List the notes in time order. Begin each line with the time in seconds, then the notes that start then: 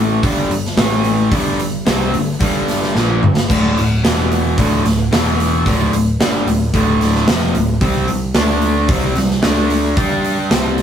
Already playing: A1 A2 E3 A3
0.23 G1 G2 D3 G3, kick, open hi-hat
0.50 G1 G2 D3, open hi-hat
0.65 snare
0.77 A1 A2 E3 A3, snare, open hi-hat
1.04 open hi-hat
1.31 G1 G2 D3 G3, kick, open hi-hat
1.58 G1 G2 D3, open hi-hat
1.85 C2 C3 G3 C4, snare, open hi-hat
2.13 G1 G2 D3, open hi-hat
2.39 G1 G2 D3 G3, kick, open hi-hat
2.68 snare, open hi-hat
2.82 snare
2.94 A#1 A#2 F3 A#3, snare
3.21 G1 G2 D3, mid tom
3.37 snare
3.49 D1 D2 A2 D3, kick, crash
3.76 D1 D2 A2, open hi-hat
4.03 E1 E2 B2 E3, snare, open hi-hat
4.32 open hi-hat
4.57 D1 D2 A2 D3, kick, open hi-hat
4.84 D1 D2 A2, snare, open hi-hat
5.11 E1 E2 B2 E3, snare, open hi-hat
5.40 open hi-hat
5.66 D1 D2 A2 D3, kick, open hi-hat
5.92 D1 D2 A2, open hi-hat
6.19 G1 G2 D3 G3, snare, open hi-hat
6.47 D1 D2 A2, open hi-hat
6.74 D1 D2 A2 D3, kick, open hi-hat
7.01 snare, open hi-hat
7.15 snare
7.27 F1 F2 C3 F3, snare, open hi-hat
7.54 D1 D2 A2, open hi-hat
7.81 C2 C3 G3 C4, kick, open hi-hat
8.08 C2 C3 G3, open hi-hat
8.34 D2 D3 A3 D4, snare, open hi-hat
8.62 open hi-hat
8.88 C2 C3 G3 C4, kick, open hi-hat
9.16 C2 C3 G3, snare, open hi-hat
9.30 snare
9.42 D2 D3 A3 D4, snare, open hi-hat
9.70 open hi-hat
9.97 G2 G3 D4 G4, kick, open hi-hat
10.25 open hi-hat
10.50 C2 C3 G3 C4, snare, open hi-hat
10.78 open hi-hat